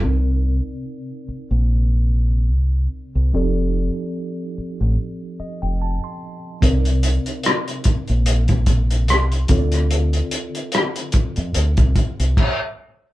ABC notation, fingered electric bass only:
X:1
M:4/4
L:1/16
Q:"Swing 16ths" 1/4=73
K:Cdor
V:1 name="Fingered electric bass" clef=bass
C,,3 z4 B,,,4- B,,, C,,2 z C,, | F,,,3 z4 A,,, z3 F,,,2 z3 | C,,3 z4 B,,,4- B,,, C,,2 D,,2- | D,,2 z4 z F,, D,, C,, z C,, z4 |]